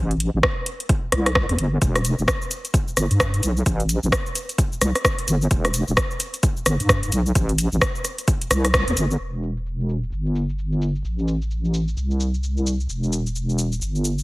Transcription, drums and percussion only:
0.11 closed hi-hat soft
0.20 closed hi-hat loud
0.43 kick loud
0.43 cross-stick loud
0.66 closed hi-hat loud
0.80 closed hi-hat medium
0.89 kick loud
0.89 closed hi-hat medium
1.12 cross-stick medium
1.12 closed hi-hat medium
1.26 cross-stick medium
1.26 closed hi-hat medium
1.35 kick loud
1.35 cross-stick loud
1.49 cross-stick soft
1.49 closed hi-hat soft
1.59 closed hi-hat loud
1.82 kick loud
1.82 closed hi-hat medium
1.82 shaker soft
1.96 cross-stick medium
1.96 closed hi-hat soft
1.96 shaker soft
2.05 closed hi-hat loud
2.05 shaker medium
2.19 shaker soft
2.28 kick loud
2.28 cross-stick loud
2.28 shaker soft
2.42 shaker soft
2.51 closed hi-hat loud
2.51 shaker medium
2.65 closed hi-hat medium
2.65 shaker soft
2.74 kick loud
2.74 closed hi-hat medium
2.74 shaker soft
2.88 shaker soft
2.97 cross-stick medium
2.97 closed hi-hat loud
2.97 shaker medium
3.11 closed hi-hat medium
3.11 shaker soft
3.20 kick loud
3.20 cross-stick loud
3.20 shaker soft
3.34 closed hi-hat medium
3.34 shaker soft
3.43 closed hi-hat loud
3.43 shaker medium
3.57 shaker soft
3.66 kick loud
3.66 closed hi-hat medium
3.66 shaker soft
3.80 closed hi-hat soft
3.80 shaker soft
3.89 closed hi-hat loud
3.89 shaker medium
4.03 shaker soft
4.12 kick loud
4.12 cross-stick loud
4.12 shaker soft
4.26 shaker soft
4.35 closed hi-hat loud
4.35 shaker medium
4.49 closed hi-hat medium
4.49 shaker soft
4.58 kick loud
4.58 closed hi-hat medium
4.58 shaker soft
4.72 shaker soft
4.81 cross-stick medium
4.81 closed hi-hat loud
4.81 shaker medium
4.95 cross-stick medium
4.95 closed hi-hat medium
4.95 shaker soft
5.05 kick loud
5.05 cross-stick loud
5.05 shaker soft
5.19 closed hi-hat medium
5.19 shaker soft
5.28 closed hi-hat loud
5.28 shaker medium
5.42 shaker soft
5.51 kick loud
5.51 closed hi-hat medium
5.51 shaker soft
5.65 cross-stick medium
5.65 closed hi-hat soft
5.65 shaker soft
5.74 closed hi-hat loud
5.74 shaker medium
5.88 shaker soft
5.97 kick loud
5.97 cross-stick loud
5.97 shaker soft
6.11 shaker soft
6.20 closed hi-hat loud
6.20 shaker medium
6.34 closed hi-hat medium
6.34 shaker soft
6.43 kick loud
6.43 closed hi-hat medium
6.43 shaker soft
6.57 shaker soft
6.66 cross-stick medium
6.66 closed hi-hat loud
6.66 shaker medium
6.80 closed hi-hat medium
6.80 shaker soft
6.89 kick loud
6.89 cross-stick loud
6.89 shaker soft
7.03 closed hi-hat medium
7.03 shaker soft
7.12 closed hi-hat loud
7.12 shaker medium
7.26 shaker soft
7.35 kick loud
7.35 closed hi-hat medium
7.35 shaker soft
7.49 closed hi-hat soft
7.49 shaker soft
7.58 closed hi-hat loud
7.58 shaker medium
7.72 shaker soft
7.81 kick loud
7.81 cross-stick loud
7.81 shaker soft
7.95 shaker soft
8.05 cross-stick soft
8.05 closed hi-hat loud
8.05 shaker medium
8.18 closed hi-hat medium
8.18 shaker soft
8.28 kick loud
8.28 closed hi-hat medium
8.28 shaker soft
8.41 closed hi-hat medium
8.41 shaker soft
8.51 cross-stick medium
8.51 closed hi-hat loud
8.51 shaker medium
8.65 cross-stick medium
8.65 closed hi-hat medium
8.65 shaker soft
8.74 kick loud
8.74 cross-stick loud
8.74 shaker soft
8.88 closed hi-hat medium
8.88 shaker soft
8.97 closed hi-hat loud
8.97 shaker medium
9.11 shaker soft
9.20 shaker soft
9.34 shaker soft
9.43 shaker medium
9.57 shaker soft
9.66 shaker soft
9.80 shaker soft
9.89 shaker medium
10.03 shaker soft
10.12 shaker soft
10.26 shaker soft
10.35 shaker medium
10.49 shaker soft
10.59 shaker soft
10.72 shaker soft
10.82 shaker medium
10.95 shaker soft
11.05 shaker soft
11.19 shaker soft
11.28 shaker medium
11.42 shaker soft
11.51 shaker soft
11.65 shaker soft
11.74 shaker medium
11.88 shaker soft
11.97 shaker soft
12.11 shaker soft
12.20 shaker medium
12.34 shaker soft
12.43 shaker soft
12.57 shaker soft
12.66 shaker medium
12.80 shaker soft
12.89 shaker soft
13.03 shaker soft
13.13 shaker medium
13.26 shaker soft
13.36 shaker soft
13.49 shaker soft
13.58 shaker medium
13.72 shaker soft
13.82 shaker soft
13.95 shaker soft
14.05 shaker medium
14.18 shaker soft

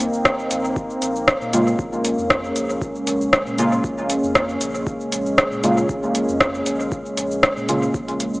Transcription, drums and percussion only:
0.00 closed hi-hat medium
0.00 shaker medium
0.14 shaker soft
0.25 kick loud
0.25 cross-stick medium
0.25 shaker soft
0.39 shaker soft
0.51 closed hi-hat medium
0.51 shaker medium
0.65 shaker soft
0.77 kick loud
0.77 shaker soft
0.90 shaker soft
1.02 closed hi-hat medium
1.02 shaker medium
1.16 shaker soft
1.28 kick loud
1.28 cross-stick medium
1.28 shaker soft
1.42 shaker soft
1.53 closed hi-hat medium
1.53 shaker medium
1.67 shaker soft
1.79 kick loud
1.79 shaker soft
1.93 shaker soft
2.05 closed hi-hat medium
2.05 shaker medium
2.19 shaker soft
2.30 kick loud
2.30 cross-stick medium
2.30 shaker soft
2.44 shaker soft
2.56 closed hi-hat medium
2.56 shaker medium
2.70 shaker soft
2.82 kick loud
2.82 shaker soft
2.95 shaker soft
3.07 closed hi-hat medium
3.07 shaker medium
3.21 shaker soft
3.33 kick loud
3.33 cross-stick medium
3.33 shaker soft
3.47 shaker soft
3.58 closed hi-hat medium
3.58 shaker medium
3.72 shaker soft
3.84 kick loud
3.84 shaker soft
3.98 shaker soft
4.10 closed hi-hat medium
4.10 shaker medium
4.24 shaker soft
4.35 kick loud
4.35 cross-stick medium
4.35 shaker soft
4.49 shaker soft
4.61 closed hi-hat medium
4.61 shaker medium
4.75 shaker soft
4.87 kick loud
4.87 shaker soft
5.01 shaker soft
5.12 closed hi-hat medium
5.12 shaker medium
5.26 shaker soft
5.38 kick loud
5.38 cross-stick medium
5.38 shaker soft
5.52 shaker soft
5.64 closed hi-hat medium
5.64 shaker medium
5.78 shaker soft
5.89 kick loud
5.89 shaker soft
6.03 shaker soft
6.15 closed hi-hat medium
6.15 shaker medium
6.29 shaker soft
6.41 kick loud
6.41 cross-stick medium
6.41 shaker soft
6.54 shaker soft
6.66 closed hi-hat medium
6.66 shaker medium
6.80 shaker soft
6.92 kick loud
6.92 shaker soft
7.06 shaker soft
7.17 closed hi-hat medium
7.17 shaker medium
7.31 shaker soft
7.43 kick loud
7.43 cross-stick medium
7.43 shaker soft
7.57 shaker soft
7.69 closed hi-hat medium
7.69 shaker medium
7.83 shaker soft
7.94 kick loud
7.94 shaker soft
8.08 closed hi-hat soft
8.08 shaker soft
8.20 closed hi-hat medium
8.20 shaker medium
8.34 shaker soft

